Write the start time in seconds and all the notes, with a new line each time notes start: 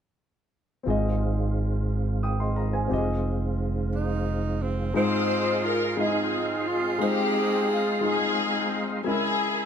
0.83 G#2 D#3 G#3 C4 F4
0.87 G#1 F4 G#4 D#5
2.23 G5 D#6
2.40 D#5 C6
2.56 A#5
2.73 C5 G#5
2.87 C4 F4 G4
2.92 F1 D#5
2.98 G#4
3.95 D#4
4.62 C4
4.94 G#2 G#3 C4 D#4 F4 G#4 C5 D#5 F5 C6
4.99 C5
5.64 F4 A#4
5.97 G#3 C4 D#4 F4 D#5
6.01 F4 G#4
6.68 F4
6.98 G#3 C4 D#4 F4 G4 G#4 C5 F5
7.70 F4
8.01 G#3 D#4 F4 G#4
8.05 C4 D#4 G#4
9.04 C#3 G#3 C#4 E4 G#4 A#4 E5 G#5